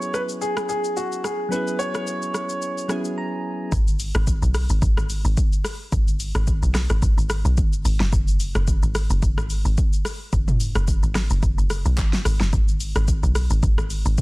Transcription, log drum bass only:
3.72 G#1
4.15 G#1
4.42 B1
4.70 G#1
4.82 G#1
4.97 G#1
5.25 G#1
5.92 G#1
6.35 G#1
6.63 B1
6.90 G#1
7.02 G#1
7.18 G#1
7.45 B1
7.58 G#1
7.85 G#1
8.00 F#1
8.13 F#1
8.55 F#1
8.83 G#1
9.10 F#1
9.23 F#1
9.38 G#1
9.65 G#1
10.33 F#1
10.75 F#1
11.03 G#1
11.31 F#1
11.43 F#1
11.58 F#1
11.85 B1
11.98 G#1
12.25 G#1
12.40 F#1
12.53 G#1
12.96 G#1
13.23 B1
13.50 G#1
13.63 G#1
13.78 G#1
14.06 G#1

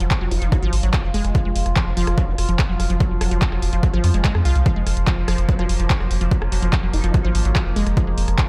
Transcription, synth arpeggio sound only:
0.00 F3
0.21 F#3
0.42 F3
0.52 F#3
0.62 F3
0.83 F#3
0.93 F3
1.14 G#3
1.35 F3
1.45 G#3
1.76 F3
1.97 F3
2.18 F#3
2.49 F3
2.69 F#3
2.90 F3
3.00 F#3
3.21 F#3
3.31 F3
3.52 F#3
3.73 F3
3.83 F#3
3.94 F3
4.04 F3
4.14 G#3
4.25 G#3
4.45 F4
4.66 F3
4.76 G#3
5.07 F3
5.28 F3
5.49 F#3
5.59 F3
5.80 F3
6.00 F#3
6.21 F3
6.31 F#3
6.52 F#3
6.62 F3
6.83 F#3
7.04 F3
7.14 F#3
7.25 F3
7.45 F#3
7.56 F3
7.76 G#3
7.97 F3
8.07 G#3
8.38 F3

